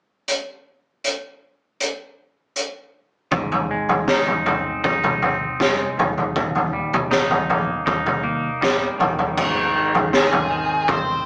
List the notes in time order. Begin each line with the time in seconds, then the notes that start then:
0.28 closed hi-hat
1.04 closed hi-hat
1.80 closed hi-hat
2.56 closed hi-hat
3.31 G#1 G#2, kick, floor tom
3.52 floor tom
3.70 G#1 G#3
3.89 floor tom
4.08 G#1 D#4, kick, snare
4.27 floor tom
4.46 G#1 C4, floor tom
4.84 G#1 D#4, kick, floor tom
5.03 floor tom, mid tom
5.22 G#1 C4, floor tom
5.60 F1 G#3, kick, snare, mid tom
5.97 D#1 D#2, floor tom
6.18 floor tom
6.36 D#1 D#2, kick, floor tom
6.55 floor tom
6.72 D#1 G3
6.93 floor tom, mid tom
7.11 D#1 D#4, kick, snare
7.31 floor tom
7.48 A#1 A#3, floor tom
7.86 D#1 D#4, kick, floor tom
8.06 floor tom, mid tom
8.23 D#2 A#3
8.61 D#1 G3, kick, snare
8.99 D#1 D#3, floor tom
9.19 floor tom
9.37 G#1 G#2, kick, floor tom, crash
9.75 D#3
9.95 floor tom
10.13 G#1 C4 G#4, snare
10.32 floor tom
10.50 D#3
10.88 G#1 C4 C5, kick, floor tom